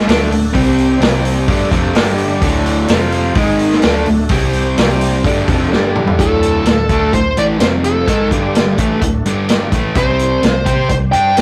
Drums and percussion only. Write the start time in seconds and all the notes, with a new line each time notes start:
0.09 snare, open hi-hat
0.32 open hi-hat
0.55 kick, open hi-hat
0.78 open hi-hat
1.02 snare, open hi-hat
1.25 open hi-hat
1.48 kick, open hi-hat
1.71 kick, open hi-hat
1.95 snare, open hi-hat
2.18 open hi-hat
2.42 kick, open hi-hat
2.66 open hi-hat
2.88 snare, open hi-hat
3.12 open hi-hat
3.35 kick, open hi-hat
3.59 open hi-hat
3.72 snare
3.82 snare, open hi-hat
4.06 open hi-hat
4.29 kick, open hi-hat
4.53 open hi-hat
4.78 snare, open hi-hat
5.01 open hi-hat
5.24 kick, open hi-hat
5.48 kick, open hi-hat
5.73 snare
5.96 mid tom
6.07 floor tom
6.19 kick, closed hi-hat
6.43 closed hi-hat
6.65 snare, closed hi-hat
6.89 kick, closed hi-hat
7.13 kick, closed hi-hat
7.37 closed hi-hat
7.60 snare, closed hi-hat
7.84 closed hi-hat
8.08 kick, closed hi-hat
8.31 kick, closed hi-hat
8.55 snare, closed hi-hat
8.78 kick, closed hi-hat
9.02 kick, closed hi-hat
9.26 closed hi-hat
9.49 snare, closed hi-hat
9.72 kick, closed hi-hat
9.95 kick, closed hi-hat
10.19 closed hi-hat
10.43 snare, closed hi-hat
10.66 kick, closed hi-hat
10.89 kick, closed hi-hat
11.13 closed hi-hat
11.37 snare, closed hi-hat